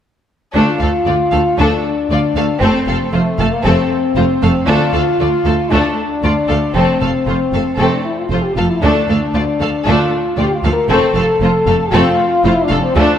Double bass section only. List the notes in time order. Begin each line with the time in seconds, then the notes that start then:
0.56 D2
0.82 D2
1.07 D2
1.33 D2
1.59 D2
2.11 D2
2.36 D2
2.62 F1
2.88 F1
3.14 F1
3.39 F1
3.65 F1
4.17 F1
4.43 F1
4.69 D2
4.95 D2
5.21 D2
5.46 D2
5.72 D2
6.23 D2
6.50 D2
6.76 F1
7.02 F1
7.27 F1
7.53 F1
7.79 F1
8.31 F1
8.56 F1
8.82 D2
9.09 D2
9.35 D2
9.61 D2
9.86 D2
10.38 D2
10.64 D2
10.90 F1
11.15 F1
11.41 F1
11.67 F1
11.93 F1
12.45 F1
12.71 F1
12.96 D2